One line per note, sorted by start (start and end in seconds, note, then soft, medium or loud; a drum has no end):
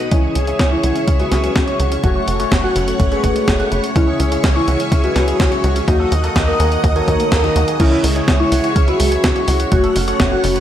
0.00 0.11 B4 medium
0.11 0.29 C#2 loud
0.11 0.45 C#3 medium
0.11 0.45 G#3 medium
0.11 0.21 C#4 medium
0.11 0.45 C#4 medium
0.11 0.45 E4 medium
0.11 0.37 E4 loud
0.11 2.02 G#4 medium
0.11 5.84 C#5 medium
0.11 0.45 C#5 medium
0.11 2.02 E5 medium
0.11 5.84 C#6 medium
0.11 kick loud
0.11 closed hi-hat medium
0.23 0.33 G#4 medium
0.35 0.53 C#2 medium
0.35 0.45 C#4 medium
0.35 closed hi-hat medium
0.47 0.81 C#3 medium
0.47 0.81 G#3 medium
0.47 0.81 C#4 medium
0.47 0.81 E4 medium
0.47 0.57 G#4 medium
0.47 0.81 C#5 medium
0.47 closed hi-hat medium
0.59 0.77 C#2 loud
0.59 0.71 C#4 medium
0.59 kick loud
0.59 snare loud
0.59 closed hi-hat medium
0.72 1.05 E4 medium
0.72 0.81 C#5 medium
0.83 0.92 C#2 medium
0.83 1.17 C#3 medium
0.83 1.17 G#3 medium
0.83 1.17 C#4 medium
0.83 1.17 E4 medium
0.83 0.93 F#4 medium
0.83 1.17 C#5 medium
0.83 closed hi-hat medium
0.96 1.05 C#4 medium
0.96 closed hi-hat medium
1.08 1.25 C#2 medium
1.08 1.17 C#4 medium
1.08 kick loud
1.08 closed hi-hat medium
1.19 1.53 C#3 medium
1.19 1.53 G#3 medium
1.19 1.53 C#4 medium
1.19 1.53 E4 medium
1.19 1.94 F#4 loud
1.19 1.29 G#4 medium
1.19 1.53 B4 loud
1.19 closed hi-hat soft
1.32 1.49 C#2 medium
1.32 1.41 C#4 medium
1.32 snare medium
1.32 closed hi-hat medium
1.44 1.53 G#4 medium
1.44 closed hi-hat medium
1.56 1.65 C#2 medium
1.56 2.01 C#3 medium
1.56 2.01 G#3 medium
1.56 1.67 C#4 medium
1.56 2.01 C#4 medium
1.56 2.01 E4 medium
1.56 2.01 C#5 medium
1.56 kick loud
1.56 snare loud
1.56 closed hi-hat medium
1.67 1.77 C#5 medium
1.67 closed hi-hat soft
1.80 1.97 C#2 loud
1.80 1.89 F#4 medium
1.80 closed hi-hat medium
1.92 2.01 C#4 medium
1.92 closed hi-hat medium
2.03 2.21 F#1 loud
2.03 2.37 A3 medium
2.03 3.94 A3 medium
2.03 2.37 C#4 medium
2.03 2.37 F#4 medium
2.03 2.13 F#4 medium
2.03 2.29 F#4 loud
2.03 2.37 C#5 loud
2.03 3.94 F#5 medium
2.03 kick loud
2.03 closed hi-hat medium
2.16 2.25 C#5 medium
2.28 2.45 F#1 medium
2.28 2.37 F#4 medium
2.28 closed hi-hat medium
2.40 2.73 A3 medium
2.40 2.73 C#4 medium
2.40 2.73 F#4 medium
2.40 2.73 C#5 loud
2.40 2.49 C#5 medium
2.40 closed hi-hat medium
2.52 2.69 F#1 medium
2.52 2.63 F#4 medium
2.52 kick loud
2.52 snare loud
2.52 closed hi-hat medium
2.64 2.97 F#4 loud
2.64 2.73 F#5 medium
2.76 2.93 F#1 loud
2.76 3.09 A3 medium
2.76 3.09 C#4 medium
2.76 3.09 F#4 medium
2.76 2.85 B4 medium
2.76 3.09 C#5 medium
2.76 closed hi-hat medium
2.88 2.97 F#4 medium
2.88 closed hi-hat medium
3.00 3.17 F#1 medium
3.00 3.09 F#4 medium
3.00 kick loud
3.00 closed hi-hat medium
3.12 3.45 A3 medium
3.12 3.45 C#4 medium
3.12 3.45 F#4 medium
3.12 3.86 G#4 loud
3.12 3.45 B4 loud
3.12 3.21 C#5 medium
3.12 closed hi-hat soft
3.24 3.33 F#1 medium
3.24 3.33 F#4 medium
3.24 kick medium
3.24 closed hi-hat medium
3.36 3.45 C#5 medium
3.36 closed hi-hat medium
3.48 3.65 F#1 medium
3.48 3.93 A3 medium
3.48 3.93 C#4 medium
3.48 3.59 F#4 medium
3.48 3.93 F#4 medium
3.48 3.93 C#5 medium
3.48 kick loud
3.48 snare loud
3.48 closed hi-hat medium
3.60 3.69 F#5 medium
3.60 closed hi-hat soft
3.72 3.81 F#1 loud
3.72 3.81 B4 medium
3.72 closed hi-hat medium
3.84 3.93 F#4 medium
3.84 closed hi-hat medium
3.96 4.13 C#2 loud
3.96 4.29 C#3 medium
3.96 4.29 G#3 medium
3.96 4.05 C#4 medium
3.96 4.29 C#4 medium
3.96 4.21 E4 loud
3.96 4.29 E4 medium
3.96 5.86 G#4 medium
3.96 4.29 C#5 loud
3.96 5.86 E5 medium
3.96 kick loud
3.96 closed hi-hat medium
4.08 4.17 G#4 medium
4.20 4.37 C#2 medium
4.20 4.29 C#4 medium
4.20 closed hi-hat medium
4.32 4.65 C#3 medium
4.32 4.65 G#3 medium
4.32 4.65 C#4 medium
4.32 4.65 E4 medium
4.32 4.41 G#4 medium
4.32 4.65 C#5 loud
4.32 closed hi-hat medium
4.44 4.61 C#2 loud
4.44 4.55 C#4 medium
4.44 kick loud
4.44 snare loud
4.44 closed hi-hat medium
4.56 4.89 E4 loud
4.56 4.65 C#5 medium
4.68 4.77 C#2 medium
4.68 5.01 C#3 medium
4.68 5.01 G#3 medium
4.68 5.01 C#4 medium
4.68 5.01 E4 medium
4.68 4.77 F#4 medium
4.68 5.01 C#5 medium
4.68 closed hi-hat medium
4.80 4.89 C#4 medium
4.80 closed hi-hat medium
4.92 5.09 C#2 medium
4.92 5.01 C#4 medium
4.92 kick loud
4.92 closed hi-hat medium
5.04 5.37 C#3 medium
5.04 5.37 G#3 medium
5.04 5.37 C#4 medium
5.04 5.37 E4 medium
5.04 5.78 F#4 loud
5.04 5.13 G#4 medium
5.04 5.37 B4 medium
5.04 closed hi-hat soft
5.16 5.33 C#2 medium
5.16 5.25 C#4 medium
5.16 snare medium
5.16 closed hi-hat medium
5.28 5.37 G#4 medium
5.28 closed hi-hat medium
5.40 5.49 C#2 medium
5.40 5.85 C#3 medium
5.40 5.85 G#3 medium
5.40 5.51 C#4 medium
5.40 5.85 C#4 medium
5.40 5.85 E4 medium
5.40 5.85 C#5 medium
5.40 kick loud
5.40 snare loud
5.40 closed hi-hat medium
5.52 5.61 C#5 medium
5.52 closed hi-hat soft
5.64 5.81 C#2 loud
5.64 5.73 F#4 medium
5.64 closed hi-hat medium
5.76 5.85 C#4 medium
5.76 closed hi-hat medium
5.88 6.05 D#2 loud
5.88 6.21 D#3 medium
5.88 6.21 A#3 medium
5.88 5.97 D#4 medium
5.88 6.21 D#4 medium
5.88 6.13 F#4 loud
5.88 6.21 F#4 medium
5.88 6.21 D#5 medium
5.88 7.78 D#5 medium
5.88 7.78 F#5 medium
5.88 7.78 D#6 medium
5.88 kick loud
5.88 closed hi-hat medium
6.00 6.09 A4 medium
6.12 6.29 D#2 loud
6.12 6.21 D#4 medium
6.12 closed hi-hat medium
6.24 6.57 D#3 medium
6.24 6.57 A#3 medium
6.24 6.57 D#4 medium
6.24 6.57 F#4 medium
6.24 6.33 A4 medium
6.24 6.57 D#5 loud
6.24 closed hi-hat soft
6.36 6.53 D#2 medium
6.36 6.47 D#4 medium
6.36 kick loud
6.36 snare loud
6.36 closed hi-hat medium
6.48 6.81 A#4 loud
6.48 6.57 D#5 medium
6.60 6.77 D#2 loud
6.60 6.93 D#3 medium
6.60 6.93 A#3 medium
6.60 6.93 D#4 medium
6.60 6.93 F#4 medium
6.60 6.69 G#4 medium
6.60 6.93 D#5 medium
6.60 closed hi-hat medium
6.72 6.81 D#4 medium
6.72 closed hi-hat medium
6.84 7.01 D#2 loud
6.84 6.93 D#4 medium
6.84 kick loud
6.84 closed hi-hat medium
6.96 7.29 D#3 medium
6.96 7.29 A#3 medium
6.96 7.29 D#4 medium
6.96 7.29 F#4 medium
6.96 7.05 A4 medium
6.96 7.70 A#4 loud
6.96 7.29 C#5 loud
6.96 closed hi-hat soft
7.08 7.17 D#2 medium
7.08 7.14 D#4 loud
7.08 kick medium
7.08 closed hi-hat medium
7.20 7.29 A3 medium
7.20 closed hi-hat medium
7.32 7.49 D#2 medium
7.32 7.43 A4 medium
7.32 kick loud
7.32 snare loud
7.32 closed hi-hat medium
7.44 7.77 D#3 medium
7.44 7.77 A#3 medium
7.44 7.50 D#4 loud
7.44 7.77 D#4 medium
7.44 7.77 F#4 medium
7.44 7.77 D#5 loud
7.44 closed hi-hat soft
7.56 7.65 D#2 loud
7.56 7.62 F#4 medium
7.56 closed hi-hat medium
7.68 7.77 G#4 medium
7.68 closed hi-hat medium
7.80 7.97 C#2 loud
7.80 8.13 C#3 medium
7.80 8.13 G#3 medium
7.80 7.86 C#4 loud
7.80 8.13 C#4 medium
7.80 8.13 E4 medium
7.80 8.05 E4 loud
7.80 9.70 G#4 medium
7.80 9.70 C#5 medium
7.80 8.13 C#5 loud
7.80 9.70 E5 medium
7.80 10.60 C#6 medium
7.80 kick loud
7.80 closed hi-hat medium
7.80 crash loud
7.92 7.98 E4 medium
8.04 8.21 C#2 medium
8.04 8.13 G#3 medium
8.04 open hi-hat loud
8.16 8.49 C#3 medium
8.16 8.49 G#3 medium
8.16 8.49 C#4 medium
8.16 8.49 E4 medium
8.16 8.25 G#4 loud
8.16 8.49 C#5 loud
8.16 closed hi-hat medium
8.28 8.45 C#2 loud
8.28 8.37 C#4 medium
8.28 kick loud
8.28 snare loud
8.28 closed hi-hat medium
8.40 8.73 E4 loud
8.40 8.49 C#5 medium
8.52 8.61 C#2 medium
8.52 8.85 C#3 medium
8.52 8.85 G#3 medium
8.52 8.85 C#4 medium
8.52 8.85 E4 medium
8.52 8.61 F#4 medium
8.52 8.85 C#5 medium
8.52 open hi-hat loud
8.64 8.73 F#4 medium
8.64 closed hi-hat medium
8.76 8.93 C#2 medium
8.76 8.81 C#4 loud
8.76 kick loud
8.76 closed hi-hat medium
8.88 9.21 C#3 medium
8.88 9.21 G#3 medium
8.88 9.21 C#4 medium
8.88 8.94 E4 medium
8.88 9.21 E4 medium
8.88 9.62 F#4 loud
8.88 9.21 B4 loud
8.88 closed hi-hat soft
9.00 9.17 C#2 medium
9.00 9.09 G#3 medium
9.00 open hi-hat loud
9.12 9.21 G#4 loud
9.12 closed hi-hat medium
9.24 9.33 C#2 medium
9.24 9.69 C#3 medium
9.24 9.69 G#3 medium
9.24 9.33 C#4 medium
9.24 9.69 C#4 medium
9.24 9.69 E4 medium
9.24 9.69 C#5 medium
9.24 kick loud
9.24 snare loud
9.24 closed hi-hat medium
9.36 9.45 C#5 medium
9.36 closed hi-hat soft
9.48 9.65 C#2 loud
9.48 9.57 F#4 medium
9.48 open hi-hat loud
9.60 9.69 F#4 medium
9.60 closed hi-hat medium
9.72 9.89 F#1 loud
9.72 10.05 A3 medium
9.72 10.60 A3 medium
9.72 10.05 C#4 medium
9.72 9.78 F#4 loud
9.72 9.97 F#4 loud
9.72 10.05 F#4 medium
9.72 10.05 C#5 medium
9.72 10.60 C#5 medium
9.72 10.60 F#5 medium
9.72 kick loud
9.72 closed hi-hat medium
9.84 9.90 A4 medium
9.84 closed hi-hat soft
9.96 10.13 F#1 loud
9.96 10.05 C#4 medium
9.96 open hi-hat loud
10.08 10.41 A3 medium
10.08 10.41 C#4 medium
10.08 10.41 F#4 medium
10.08 10.41 C#5 loud
10.08 10.17 C#5 loud
10.08 closed hi-hat medium
10.20 10.37 F#1 medium
10.20 10.29 F#4 medium
10.20 kick loud
10.20 snare loud
10.20 closed hi-hat medium
10.32 10.60 F#4 loud
10.32 10.41 F#5 medium
10.44 10.60 F#1 loud
10.44 10.60 A3 medium
10.44 10.60 C#4 medium
10.44 10.60 F#4 medium
10.44 10.53 B4 medium
10.44 10.60 C#5 medium
10.44 open hi-hat loud
10.56 10.60 B4 medium
10.56 closed hi-hat medium